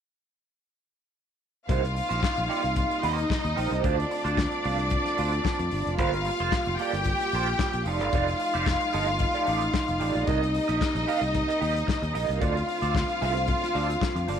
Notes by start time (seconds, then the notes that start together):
1.68 C2 C3 G3 A#3 D#4 F4 G4 C5 F5, kick, closed hi-hat
1.83 muted clean electric guitar stroke, closed hi-hat
1.94 muted clean electric guitar stroke, open hi-hat
2.09 A#1 A#3 D#4 G4 C5, closed hi-hat
2.21 muted clean electric guitar stroke, kick, snare, clap
2.36 A#1, muted clean electric guitar stroke, closed hi-hat
2.48 A#3 D#4 G4 D5, open hi-hat
2.62 C2, muted clean electric guitar stroke, closed hi-hat
2.75 muted clean electric guitar stroke, kick, closed hi-hat
2.91 muted clean electric guitar stroke, closed hi-hat
3.02 D#2 A#3 D#4 G4 C5 D#5, open hi-hat
3.17 muted clean electric guitar stroke, closed hi-hat
3.30 muted clean electric guitar stroke, kick, snare, clap
3.44 D#2, muted clean electric guitar stroke, closed hi-hat
3.56 A#1 A#3 D#4 G4 C5, open hi-hat
3.71 C2 A#3 D#4 G4 C5, closed hi-hat
3.83 D2 D3 A3 C4 D4 F4 C5 D5, kick, closed hi-hat
3.98 muted clean electric guitar stroke, closed hi-hat
4.10 muted clean electric guitar stroke, open hi-hat
4.24 D2 A3 D4 F4 C5, closed hi-hat
4.37 muted clean electric guitar stroke, kick, snare, clap
4.52 muted clean electric guitar stroke, closed hi-hat
4.64 C2 A3 D4 F4 D5, open hi-hat
4.78 muted clean electric guitar stroke, closed hi-hat
4.90 muted clean electric guitar stroke, kick, closed hi-hat
5.05 muted clean electric guitar stroke, snare, closed hi-hat
5.17 D2 A3 D4 F4 C5, open hi-hat
5.32 muted clean electric guitar stroke, closed hi-hat
5.44 muted clean electric guitar stroke, kick, snare, clap
5.59 F2, muted clean electric guitar stroke, closed hi-hat
5.71 G1, open hi-hat
5.85 F1, muted clean electric guitar stroke, closed hi-hat
5.96 G1 G3 A#3 F4 A4 C5 F5, kick, closed hi-hat
6.12 muted clean electric guitar stroke, closed hi-hat
6.25 muted clean electric guitar stroke, open hi-hat
6.39 F1 A#3 F4 A4 C5, closed hi-hat
6.52 muted clean electric guitar stroke, kick, snare, clap
6.65 F1, muted clean electric guitar stroke, closed hi-hat
6.79 A#3 F4 G4 A4 D5 G5, open hi-hat
6.93 G1, muted clean electric guitar stroke, closed hi-hat
7.04 muted clean electric guitar stroke, kick, closed hi-hat
7.20 muted clean electric guitar stroke, snare, closed hi-hat
7.32 A#1 A#3 F4 A4 C5, open hi-hat
7.46 muted clean electric guitar stroke, closed hi-hat
7.59 muted clean electric guitar stroke, kick, snare, clap
7.73 A#1, muted clean electric guitar stroke, closed hi-hat
7.86 F1 F3 A3 D#4 F4 G4 A4 D5 F5, open hi-hat
8.00 G1 D#4 G4 A4 D5, closed hi-hat
8.13 F1 D#4 G4 A4 D5, kick, closed hi-hat
8.27 muted clean electric guitar stroke, closed hi-hat
8.39 muted clean electric guitar stroke, open hi-hat
8.54 F1 D#4 G4 A4 D5, closed hi-hat
8.66 muted clean electric guitar stroke, kick, snare, clap
8.81 muted clean electric guitar stroke, closed hi-hat
8.93 G1 D#4 G4 A4 D#5, open hi-hat
9.08 muted clean electric guitar stroke, closed hi-hat
9.19 muted clean electric guitar stroke, kick, closed hi-hat
9.34 D#4 G4 A4 D5, closed hi-hat
9.47 A1 D#4 G4 A4 D5, open hi-hat
9.61 muted clean electric guitar stroke, closed hi-hat
9.74 muted clean electric guitar stroke, kick, snare, clap
9.88 F1, muted clean electric guitar stroke, closed hi-hat
10.00 A1 D#4 G4 A4 D5, open hi-hat
10.15 A#1 D#4 G4 A4 D5, closed hi-hat
10.26 C2 C3 G3 A#3 D#4 G4 A#4 D#5, kick, closed hi-hat
10.42 muted clean electric guitar stroke, closed hi-hat
10.54 muted clean electric guitar stroke, open hi-hat
10.68 A#1 D#4 G4 A#4 D#5, closed hi-hat
10.81 muted clean electric guitar stroke, kick, snare, clap
10.95 A#1, muted clean electric guitar stroke, closed hi-hat
11.07 D#4 G4 A#4 F5, open hi-hat
11.21 C2, muted clean electric guitar stroke, closed hi-hat
11.34 muted clean electric guitar stroke, kick, closed hi-hat
11.48 D#4 G4 A#4 D#5, closed hi-hat
11.60 D#2 D#4 G4 A#4 D#5, open hi-hat
11.74 muted clean electric guitar stroke, closed hi-hat
11.87 muted clean electric guitar stroke, kick, snare, clap
12.02 D#2, muted clean electric guitar stroke, closed hi-hat
12.13 A#1 D#4 G4 A#4 D#5, open hi-hat
12.28 C2 D#4 G4 A#4 D#5, closed hi-hat
12.40 D2 D3 A3 C4 F4 A4 D5 F5, kick, closed hi-hat
12.55 muted clean electric guitar stroke, closed hi-hat
12.68 muted clean electric guitar stroke, open hi-hat
12.82 D2 C4 F4 A4 D5, closed hi-hat
12.94 muted clean electric guitar stroke, kick, snare, clap
13.09 muted clean electric guitar stroke, closed hi-hat
13.21 C2 C4 F4 A4 F5, open hi-hat
13.34 muted clean electric guitar stroke, closed hi-hat
13.47 muted clean electric guitar stroke, kick, closed hi-hat
13.61 muted clean electric guitar stroke, snare, closed hi-hat
13.73 D2 C4 F4 A4 D5, open hi-hat
13.88 muted clean electric guitar stroke, closed hi-hat
14.00 muted clean electric guitar stroke, kick, snare, clap
14.15 F2, muted clean electric guitar stroke, closed hi-hat
14.28 G1 C4 F4 A4 D5, open hi-hat